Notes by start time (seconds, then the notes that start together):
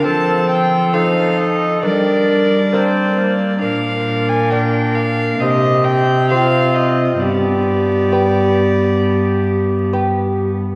0.04 F3 C4 A4 A5
0.50 G5
0.93 C4 D#4 F4 A4 F5
1.38 D#5
1.83 G3 D4 A#4 B4 D5
2.72 A#3 C4 D4 A#4 C5
3.17 A#3
3.61 A#2 D4 A#4 F5
4.29 G#5
4.50 A#3 D4 D5 G5
4.95 F5
5.40 C3 C4 G4 D#5
5.85 G5
6.29 G4 C5 F5
6.35 F4
6.74 D#5
7.20 G2 B3 G4 D5
8.12 G4 B4
9.93 G4 B4